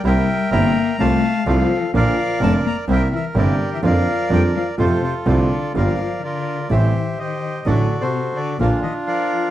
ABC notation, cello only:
X:1
M:4/4
L:1/16
Q:1/4=126
K:Bb
V:1 name="Cello" clef=bass
G,4 B,4 A,4 F,4 | F,4 A,2 B,2 G,2 =E,2 D,3 E, | F,4 G,2 F,2 C,2 C,2 D,4 | [K:Gm] F,4 D,4 =E,4 _E,4 |
D,3 C,3 D,2 B,,2 E,2 F,4 |]